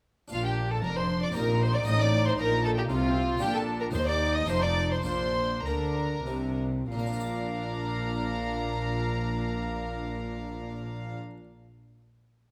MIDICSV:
0, 0, Header, 1, 8, 480
1, 0, Start_track
1, 0, Key_signature, -2, "major"
1, 0, Tempo, 517241
1, 305, Time_signature, 3, 2, 24, 8
1, 3665, Tempo, 567108
1, 5105, Tempo, 632911
1, 6065, Tempo, 664452
1, 10107, End_track
2, 0, Start_track
2, 0, Title_t, "Violin section"
2, 0, Program_c, 0, 48
2, 297, Note_on_c, 0, 77, 110
2, 412, Note_off_c, 0, 77, 0
2, 419, Note_on_c, 0, 79, 93
2, 494, Note_off_c, 0, 79, 0
2, 663, Note_on_c, 0, 81, 86
2, 779, Note_on_c, 0, 82, 105
2, 781, Note_off_c, 0, 81, 0
2, 897, Note_on_c, 0, 84, 104
2, 901, Note_off_c, 0, 82, 0
2, 1132, Note_on_c, 0, 86, 91
2, 1135, Note_off_c, 0, 84, 0
2, 1252, Note_on_c, 0, 82, 92
2, 1257, Note_off_c, 0, 86, 0
2, 1487, Note_on_c, 0, 84, 92
2, 1497, Note_off_c, 0, 82, 0
2, 1611, Note_off_c, 0, 84, 0
2, 1616, Note_on_c, 0, 86, 97
2, 1730, Note_on_c, 0, 87, 121
2, 1738, Note_off_c, 0, 86, 0
2, 1852, Note_off_c, 0, 87, 0
2, 1854, Note_on_c, 0, 86, 110
2, 2086, Note_on_c, 0, 84, 98
2, 2094, Note_off_c, 0, 86, 0
2, 2198, Note_on_c, 0, 82, 107
2, 2210, Note_off_c, 0, 84, 0
2, 2433, Note_on_c, 0, 81, 112
2, 2444, Note_off_c, 0, 82, 0
2, 2551, Note_on_c, 0, 79, 91
2, 2562, Note_off_c, 0, 81, 0
2, 2674, Note_on_c, 0, 77, 96
2, 2678, Note_off_c, 0, 79, 0
2, 3155, Note_off_c, 0, 77, 0
2, 3160, Note_on_c, 0, 79, 120
2, 3286, Note_off_c, 0, 79, 0
2, 3297, Note_on_c, 0, 81, 91
2, 3536, Note_on_c, 0, 82, 85
2, 3541, Note_off_c, 0, 81, 0
2, 3586, Note_off_c, 0, 82, 0
2, 3658, Note_on_c, 0, 84, 106
2, 3705, Note_off_c, 0, 84, 0
2, 3769, Note_on_c, 0, 86, 103
2, 3999, Note_off_c, 0, 86, 0
2, 4005, Note_on_c, 0, 87, 92
2, 4120, Note_on_c, 0, 84, 102
2, 4123, Note_off_c, 0, 87, 0
2, 4235, Note_on_c, 0, 86, 106
2, 4238, Note_off_c, 0, 84, 0
2, 4478, Note_off_c, 0, 86, 0
2, 4482, Note_on_c, 0, 84, 80
2, 4590, Note_off_c, 0, 84, 0
2, 4600, Note_on_c, 0, 84, 110
2, 5092, Note_off_c, 0, 84, 0
2, 5105, Note_on_c, 0, 82, 89
2, 5815, Note_off_c, 0, 82, 0
2, 6063, Note_on_c, 0, 82, 94
2, 9126, Note_off_c, 0, 82, 0
2, 10107, End_track
3, 0, Start_track
3, 0, Title_t, "Violin section"
3, 0, Program_c, 1, 48
3, 311, Note_on_c, 1, 65, 70
3, 420, Note_off_c, 1, 65, 0
3, 430, Note_on_c, 1, 67, 70
3, 667, Note_off_c, 1, 67, 0
3, 668, Note_on_c, 1, 69, 76
3, 773, Note_on_c, 1, 70, 86
3, 783, Note_off_c, 1, 69, 0
3, 896, Note_off_c, 1, 70, 0
3, 913, Note_on_c, 1, 72, 74
3, 1147, Note_off_c, 1, 72, 0
3, 1150, Note_on_c, 1, 74, 82
3, 1196, Note_off_c, 1, 74, 0
3, 1273, Note_on_c, 1, 70, 96
3, 1502, Note_off_c, 1, 70, 0
3, 1513, Note_on_c, 1, 72, 86
3, 1622, Note_on_c, 1, 74, 82
3, 1626, Note_off_c, 1, 72, 0
3, 1741, Note_off_c, 1, 74, 0
3, 1753, Note_on_c, 1, 75, 91
3, 1866, Note_off_c, 1, 75, 0
3, 1876, Note_on_c, 1, 74, 95
3, 2106, Note_off_c, 1, 74, 0
3, 2112, Note_on_c, 1, 72, 79
3, 2157, Note_off_c, 1, 72, 0
3, 2231, Note_on_c, 1, 70, 92
3, 2456, Note_off_c, 1, 70, 0
3, 2466, Note_on_c, 1, 69, 87
3, 2511, Note_off_c, 1, 69, 0
3, 2590, Note_on_c, 1, 67, 83
3, 2634, Note_off_c, 1, 67, 0
3, 2703, Note_on_c, 1, 65, 97
3, 3169, Note_off_c, 1, 65, 0
3, 3177, Note_on_c, 1, 67, 106
3, 3290, Note_on_c, 1, 69, 76
3, 3297, Note_off_c, 1, 67, 0
3, 3364, Note_off_c, 1, 69, 0
3, 3538, Note_on_c, 1, 70, 82
3, 3588, Note_off_c, 1, 70, 0
3, 3658, Note_on_c, 1, 72, 95
3, 3773, Note_off_c, 1, 72, 0
3, 3775, Note_on_c, 1, 74, 80
3, 4004, Note_on_c, 1, 75, 92
3, 4007, Note_off_c, 1, 74, 0
3, 4121, Note_off_c, 1, 75, 0
3, 4122, Note_on_c, 1, 72, 89
3, 4237, Note_on_c, 1, 74, 82
3, 4241, Note_off_c, 1, 72, 0
3, 4480, Note_off_c, 1, 74, 0
3, 4486, Note_on_c, 1, 72, 67
3, 4596, Note_off_c, 1, 72, 0
3, 4606, Note_on_c, 1, 72, 89
3, 5095, Note_off_c, 1, 72, 0
3, 5109, Note_on_c, 1, 70, 67
3, 5802, Note_off_c, 1, 70, 0
3, 6070, Note_on_c, 1, 77, 73
3, 9133, Note_off_c, 1, 77, 0
3, 10107, End_track
4, 0, Start_track
4, 0, Title_t, "Violin"
4, 0, Program_c, 2, 40
4, 307, Note_on_c, 2, 65, 74
4, 410, Note_off_c, 2, 65, 0
4, 415, Note_on_c, 2, 67, 77
4, 656, Note_on_c, 2, 69, 78
4, 669, Note_off_c, 2, 67, 0
4, 766, Note_off_c, 2, 69, 0
4, 771, Note_on_c, 2, 70, 86
4, 893, Note_on_c, 2, 72, 86
4, 907, Note_off_c, 2, 70, 0
4, 1131, Note_off_c, 2, 72, 0
4, 1136, Note_on_c, 2, 74, 76
4, 1254, Note_off_c, 2, 74, 0
4, 1260, Note_on_c, 2, 70, 79
4, 1509, Note_on_c, 2, 72, 94
4, 1523, Note_off_c, 2, 70, 0
4, 1623, Note_on_c, 2, 74, 87
4, 1637, Note_off_c, 2, 72, 0
4, 1729, Note_off_c, 2, 74, 0
4, 1735, Note_on_c, 2, 75, 91
4, 1866, Note_on_c, 2, 74, 98
4, 1880, Note_off_c, 2, 75, 0
4, 2100, Note_off_c, 2, 74, 0
4, 2116, Note_on_c, 2, 72, 83
4, 2159, Note_off_c, 2, 72, 0
4, 2220, Note_on_c, 2, 70, 95
4, 2451, Note_off_c, 2, 70, 0
4, 2457, Note_on_c, 2, 69, 90
4, 2503, Note_off_c, 2, 69, 0
4, 2579, Note_on_c, 2, 67, 73
4, 2625, Note_off_c, 2, 67, 0
4, 2697, Note_on_c, 2, 65, 88
4, 3169, Note_on_c, 2, 67, 80
4, 3183, Note_off_c, 2, 65, 0
4, 3291, Note_on_c, 2, 69, 73
4, 3305, Note_off_c, 2, 67, 0
4, 3524, Note_off_c, 2, 69, 0
4, 3530, Note_on_c, 2, 70, 74
4, 3581, Note_off_c, 2, 70, 0
4, 3659, Note_on_c, 2, 72, 86
4, 3759, Note_off_c, 2, 72, 0
4, 3764, Note_on_c, 2, 74, 91
4, 4001, Note_on_c, 2, 75, 82
4, 4014, Note_off_c, 2, 74, 0
4, 4125, Note_on_c, 2, 72, 85
4, 4138, Note_off_c, 2, 75, 0
4, 4233, Note_on_c, 2, 74, 94
4, 4246, Note_off_c, 2, 72, 0
4, 4482, Note_on_c, 2, 72, 81
4, 4495, Note_off_c, 2, 74, 0
4, 4600, Note_off_c, 2, 72, 0
4, 4605, Note_on_c, 2, 72, 72
4, 5110, Note_on_c, 2, 70, 67
4, 5121, Note_off_c, 2, 72, 0
4, 5817, Note_off_c, 2, 70, 0
4, 6060, Note_on_c, 2, 70, 65
4, 9123, Note_off_c, 2, 70, 0
4, 10107, End_track
5, 0, Start_track
5, 0, Title_t, "Viola section"
5, 0, Program_c, 3, 48
5, 302, Note_on_c, 3, 62, 65
5, 749, Note_off_c, 3, 62, 0
5, 777, Note_on_c, 3, 62, 61
5, 1249, Note_off_c, 3, 62, 0
5, 1257, Note_on_c, 3, 63, 81
5, 2660, Note_off_c, 3, 63, 0
5, 2691, Note_on_c, 3, 65, 86
5, 2928, Note_on_c, 3, 60, 74
5, 2931, Note_off_c, 3, 65, 0
5, 3167, Note_on_c, 3, 62, 75
5, 3171, Note_off_c, 3, 60, 0
5, 3651, Note_off_c, 3, 62, 0
5, 3667, Note_on_c, 3, 63, 79
5, 4121, Note_off_c, 3, 63, 0
5, 4131, Note_on_c, 3, 63, 79
5, 4598, Note_off_c, 3, 63, 0
5, 4610, Note_on_c, 3, 62, 66
5, 5849, Note_off_c, 3, 62, 0
5, 6058, Note_on_c, 3, 62, 72
5, 9121, Note_off_c, 3, 62, 0
5, 10107, End_track
6, 0, Start_track
6, 0, Title_t, "Harpsichord"
6, 0, Program_c, 4, 6
6, 258, Note_on_c, 4, 62, 54
6, 269, Note_on_c, 4, 65, 52
6, 301, Note_on_c, 4, 46, 57
6, 745, Note_off_c, 4, 46, 0
6, 782, Note_on_c, 4, 41, 56
6, 1209, Note_off_c, 4, 62, 0
6, 1215, Note_off_c, 4, 65, 0
6, 1223, Note_on_c, 4, 60, 56
6, 1224, Note_off_c, 4, 41, 0
6, 1235, Note_on_c, 4, 63, 54
6, 1254, Note_on_c, 4, 67, 56
6, 1267, Note_on_c, 4, 46, 62
6, 1689, Note_off_c, 4, 60, 0
6, 1701, Note_on_c, 4, 60, 59
6, 1704, Note_off_c, 4, 63, 0
6, 1706, Note_off_c, 4, 46, 0
6, 1716, Note_on_c, 4, 63, 61
6, 1722, Note_off_c, 4, 67, 0
6, 1730, Note_on_c, 4, 65, 56
6, 1745, Note_on_c, 4, 45, 66
6, 2181, Note_off_c, 4, 45, 0
6, 2210, Note_on_c, 4, 46, 63
6, 2652, Note_off_c, 4, 46, 0
6, 2688, Note_on_c, 4, 48, 59
6, 3116, Note_off_c, 4, 60, 0
6, 3124, Note_off_c, 4, 63, 0
6, 3130, Note_on_c, 4, 58, 54
6, 3131, Note_off_c, 4, 65, 0
6, 3135, Note_off_c, 4, 48, 0
6, 3147, Note_on_c, 4, 62, 63
6, 3156, Note_on_c, 4, 65, 63
6, 3177, Note_on_c, 4, 46, 72
6, 3616, Note_off_c, 4, 58, 0
6, 3627, Note_on_c, 4, 58, 55
6, 3628, Note_off_c, 4, 46, 0
6, 3635, Note_off_c, 4, 62, 0
6, 3640, Note_off_c, 4, 65, 0
6, 3641, Note_on_c, 4, 63, 54
6, 3656, Note_on_c, 4, 67, 56
6, 3666, Note_on_c, 4, 39, 63
6, 4092, Note_off_c, 4, 39, 0
6, 4092, Note_on_c, 4, 57, 57
6, 4093, Note_off_c, 4, 63, 0
6, 4094, Note_off_c, 4, 58, 0
6, 4104, Note_on_c, 4, 63, 52
6, 4107, Note_off_c, 4, 67, 0
6, 4117, Note_on_c, 4, 65, 46
6, 4127, Note_on_c, 4, 41, 57
6, 4571, Note_off_c, 4, 41, 0
6, 4571, Note_on_c, 4, 58, 53
6, 4573, Note_off_c, 4, 57, 0
6, 4579, Note_off_c, 4, 63, 0
6, 4583, Note_on_c, 4, 62, 52
6, 4586, Note_off_c, 4, 65, 0
6, 4597, Note_on_c, 4, 65, 52
6, 4606, Note_on_c, 4, 46, 53
6, 5071, Note_off_c, 4, 46, 0
6, 5113, Note_on_c, 4, 50, 55
6, 5545, Note_off_c, 4, 50, 0
6, 5571, Note_on_c, 4, 48, 56
6, 6018, Note_off_c, 4, 58, 0
6, 6024, Note_off_c, 4, 62, 0
6, 6030, Note_off_c, 4, 65, 0
6, 6033, Note_off_c, 4, 48, 0
6, 6067, Note_on_c, 4, 46, 57
6, 6117, Note_on_c, 4, 58, 61
6, 6170, Note_on_c, 4, 62, 60
6, 6218, Note_on_c, 4, 65, 58
6, 6269, Note_on_c, 4, 74, 61
6, 9130, Note_off_c, 4, 46, 0
6, 9180, Note_off_c, 4, 58, 0
6, 9233, Note_off_c, 4, 62, 0
6, 9281, Note_off_c, 4, 65, 0
6, 9332, Note_off_c, 4, 74, 0
6, 10107, End_track
7, 0, Start_track
7, 0, Title_t, "Cello section"
7, 0, Program_c, 5, 48
7, 298, Note_on_c, 5, 46, 74
7, 747, Note_off_c, 5, 46, 0
7, 774, Note_on_c, 5, 41, 84
7, 1256, Note_on_c, 5, 46, 91
7, 1257, Note_off_c, 5, 41, 0
7, 1727, Note_off_c, 5, 46, 0
7, 1738, Note_on_c, 5, 45, 85
7, 2205, Note_off_c, 5, 45, 0
7, 2211, Note_on_c, 5, 46, 91
7, 2680, Note_off_c, 5, 46, 0
7, 2694, Note_on_c, 5, 48, 98
7, 3165, Note_off_c, 5, 48, 0
7, 3176, Note_on_c, 5, 46, 83
7, 3655, Note_off_c, 5, 46, 0
7, 3662, Note_on_c, 5, 39, 84
7, 4124, Note_off_c, 5, 39, 0
7, 4125, Note_on_c, 5, 41, 89
7, 4595, Note_off_c, 5, 41, 0
7, 4605, Note_on_c, 5, 46, 67
7, 5094, Note_off_c, 5, 46, 0
7, 5105, Note_on_c, 5, 50, 76
7, 5562, Note_off_c, 5, 50, 0
7, 5567, Note_on_c, 5, 48, 77
7, 6052, Note_off_c, 5, 48, 0
7, 6058, Note_on_c, 5, 46, 73
7, 9121, Note_off_c, 5, 46, 0
7, 10107, End_track
8, 0, Start_track
8, 0, Title_t, "Double bass section"
8, 0, Program_c, 6, 48
8, 299, Note_on_c, 6, 34, 65
8, 747, Note_off_c, 6, 34, 0
8, 777, Note_on_c, 6, 29, 68
8, 1251, Note_on_c, 6, 34, 80
8, 1259, Note_off_c, 6, 29, 0
8, 1724, Note_on_c, 6, 33, 73
8, 1725, Note_off_c, 6, 34, 0
8, 2198, Note_off_c, 6, 33, 0
8, 2205, Note_on_c, 6, 34, 86
8, 2677, Note_off_c, 6, 34, 0
8, 2681, Note_on_c, 6, 36, 79
8, 3158, Note_off_c, 6, 36, 0
8, 3164, Note_on_c, 6, 34, 76
8, 3649, Note_off_c, 6, 34, 0
8, 3659, Note_on_c, 6, 39, 72
8, 4120, Note_on_c, 6, 29, 75
8, 4123, Note_off_c, 6, 39, 0
8, 4592, Note_off_c, 6, 29, 0
8, 4603, Note_on_c, 6, 34, 71
8, 5093, Note_off_c, 6, 34, 0
8, 5107, Note_on_c, 6, 38, 70
8, 5563, Note_off_c, 6, 38, 0
8, 5569, Note_on_c, 6, 36, 66
8, 6053, Note_off_c, 6, 36, 0
8, 6060, Note_on_c, 6, 34, 73
8, 9123, Note_off_c, 6, 34, 0
8, 10107, End_track
0, 0, End_of_file